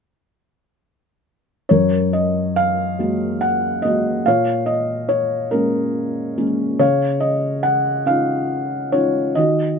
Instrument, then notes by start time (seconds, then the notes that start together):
felt piano
1.69 F#2 A#4 C#5
2.13 D#5
2.56 F5
2.99 G#3 A#3 F#4
3.41 F#5
3.82 G#3 A#3 F#4 D#5
4.26 A#2 C#5 F5
4.66 D#5
5.09 C#5
5.51 G#3 A#3 C#4 A#4
6.37 G#3 A#3 C#4
6.79 C#3 C#5 F5
7.20 D#5
7.63 F#5
8.06 C#4 D#4 F4 F5
8.92 C#4 D#4 F4 C#5
9.35 D#3 F#4 D#5